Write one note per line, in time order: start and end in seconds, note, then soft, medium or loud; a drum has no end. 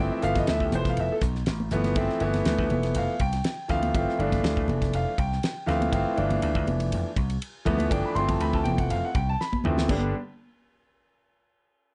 0.00 0.20 E3 medium
0.00 0.20 F3 medium
0.00 0.21 A3 medium
0.00 0.21 C4 medium
0.00 0.11 G5 medium
0.12 0.23 E5 medium
0.21 0.43 G1 medium
0.21 1.13 E3 medium
0.21 1.14 F3 medium
0.21 1.14 A3 medium
0.21 1.14 B3 medium
0.21 0.36 F5 loud
0.21 hi-hat pedal medium
0.21 ride medium
0.35 0.48 D#5 medium
0.35 kick medium
0.35 snare soft
0.35 ride medium
0.35 high conga medium
0.35 low conga medium
0.47 0.58 D2 medium
0.47 0.61 E5 medium
0.47 snare loud
0.47 ride medium
0.60 0.70 D2 medium
0.60 0.73 G4 medium
0.60 kick medium
0.72 0.92 F1 medium
0.72 0.86 C5 medium
0.72 hi-hat pedal medium
0.72 ride medium
0.72 high conga medium
0.72 low conga medium
0.85 0.99 F5 medium
0.85 kick medium
0.85 snare soft
0.85 ride medium
0.97 1.08 F1 medium
0.97 1.11 E5 medium
0.97 ride medium
1.12 1.19 A4 medium
1.21 1.44 B1 medium
1.21 kick medium
1.21 hi-hat pedal medium
1.21 ride medium
1.35 snare soft
1.46 1.69 A1 medium
1.46 snare loud
1.46 ride medium
1.60 high conga medium
1.71 1.94 G1 medium
1.71 1.94 E3 medium
1.71 1.94 F3 medium
1.71 1.95 A3 medium
1.71 1.95 B3 medium
1.71 hi-hat pedal medium
1.71 ride medium
1.71 low conga medium
1.84 snare soft
1.84 ride medium
1.84 high conga medium
1.96 2.07 G1 medium
1.96 2.19 E3 medium
1.96 2.19 F3 medium
1.96 2.19 A3 medium
1.96 2.20 C4 loud
1.96 kick loud
1.96 ride medium
2.09 snare soft
2.20 2.41 G1 medium
2.20 3.12 E3 medium
2.20 3.12 F3 medium
2.20 3.13 A3 medium
2.20 3.13 B3 medium
2.20 ride medium
2.34 snare soft
2.34 ride medium
2.34 high conga medium
2.34 low conga medium
2.45 2.56 D2 medium
2.45 snare medium
2.45 ride medium
2.58 2.68 D2 medium
2.58 kick medium
2.70 2.91 F1 loud
2.70 ride medium
2.70 high conga medium
2.70 low conga medium
2.83 snare soft
2.83 ride medium
2.95 3.06 F1 medium
2.95 3.20 F5 medium
2.95 ride medium
3.19 3.40 C2 medium
3.19 3.67 G5 medium
3.19 kick medium
3.19 ride medium
3.33 snare soft
3.33 ride medium
3.44 snare loud
3.44 ride medium
3.68 3.90 D2 medium
3.68 3.92 E3 medium
3.68 3.92 F3 medium
3.68 3.92 A3 medium
3.68 3.93 C4 medium
3.68 3.94 F5 loud
3.68 kick medium
3.68 snare soft
3.68 ride medium
3.68 low conga medium
3.82 ride medium
3.82 high conga medium
3.94 4.05 G1 medium
3.94 4.17 E3 medium
3.94 4.17 F3 medium
3.94 4.17 A3 medium
3.94 4.18 C4 medium
3.94 4.65 F5 medium
3.94 kick loud
3.94 ride medium
4.09 snare soft
4.18 4.39 G1 medium
4.18 5.10 E3 medium
4.18 5.10 F3 medium
4.18 5.11 A3 medium
4.18 5.11 D4 medium
4.18 ride medium
4.32 kick medium
4.32 snare soft
4.32 ride medium
4.32 high conga medium
4.32 low conga medium
4.43 4.54 D2 medium
4.43 snare loud
4.43 ride medium
4.57 4.66 D2 medium
4.57 kick medium
4.68 4.89 F1 medium
4.68 ride soft
4.68 high conga medium
4.68 low conga medium
4.82 kick medium
4.82 snare soft
4.82 ride medium
4.93 5.04 F1 loud
4.93 5.18 F5 medium
4.93 ride medium
5.18 5.38 C2 loud
5.18 5.65 G5 medium
5.18 kick medium
5.18 ride medium
5.32 snare soft
5.43 snare loud
5.43 ride medium
5.66 5.88 D2 medium
5.66 5.89 E3 medium
5.66 5.90 F3 medium
5.66 5.90 A3 medium
5.66 5.91 C4 medium
5.66 5.91 F5 medium
5.66 snare soft
5.66 ride medium
5.66 low conga medium
5.81 ride medium
5.81 high conga medium
5.91 6.03 G1 loud
5.91 6.14 E3 medium
5.91 6.14 F3 medium
5.91 6.15 A3 medium
5.91 6.15 C4 medium
5.91 kick loud
5.91 ride medium
5.95 6.64 F5 medium
6.15 6.38 G1 medium
6.15 7.08 E3 medium
6.15 7.08 F3 medium
6.15 7.08 A3 medium
6.15 7.08 D4 medium
6.15 ride medium
6.30 ride medium
6.30 high conga medium
6.30 low conga medium
6.42 6.53 D2 medium
6.42 ride medium
6.55 6.65 D2 medium
6.55 kick medium
6.67 6.87 F1 medium
6.67 ride medium
6.67 high conga medium
6.67 low conga medium
6.80 ride medium
6.92 7.03 F1 medium
6.92 ride medium
7.16 7.37 C2 medium
7.16 kick medium
7.16 ride medium
7.30 ride medium
7.42 ride medium
7.65 7.86 D2 medium
7.65 7.88 E3 medium
7.65 7.88 F3 medium
7.65 7.89 A3 medium
7.65 7.89 B3 medium
7.65 kick medium
7.65 ride medium
7.65 low conga medium
7.78 ride medium
7.78 high conga medium
7.89 8.01 G1 medium
7.89 8.13 E3 medium
7.89 8.13 F3 medium
7.89 8.13 A3 medium
7.89 8.14 D4 medium
7.89 8.04 G5 medium
7.89 kick loud
7.89 ride medium
8.05 8.16 B5 medium
8.15 8.35 G1 medium
8.15 9.06 E3 medium
8.15 9.07 F3 medium
8.15 9.07 A3 medium
8.15 9.07 C4 medium
8.15 8.28 C6 loud
8.15 ride medium
8.28 8.41 A5 medium
8.28 kick medium
8.28 ride medium
8.28 high conga medium
8.28 low conga medium
8.40 8.51 D2 medium
8.40 8.53 B5 loud
8.40 ride medium
8.53 8.63 D2 medium
8.53 8.65 A5 medium
8.53 kick medium
8.64 8.86 F1 loud
8.64 8.77 G5 medium
8.64 ride medium
8.64 high conga medium
8.64 low conga medium
8.78 8.90 F#5 medium
8.78 kick medium
8.78 ride medium
8.90 9.01 F1 loud
8.90 9.03 F5 medium
8.90 ride medium
9.05 9.15 F#5 medium
9.15 9.35 C2 medium
9.15 9.28 G5 medium
9.15 kick medium
9.15 ride medium
9.29 9.40 A5 loud
9.41 9.55 B5 loud
9.41 snare medium
9.53 kick medium
9.53 high conga medium
9.64 9.85 D2 medium
9.64 9.87 E3 medium
9.64 9.87 F3 medium
9.64 9.87 A3 medium
9.64 9.88 C4 medium
9.64 mid tom medium
9.64 low conga medium
9.77 snare medium
9.77 high conga medium
9.88 10.12 G1 medium
9.88 10.12 D3 medium
9.88 10.12 G3 medium
9.88 10.12 B3 medium
9.88 10.12 D4 medium
9.88 kick loud
9.88 crash medium
9.88 high conga medium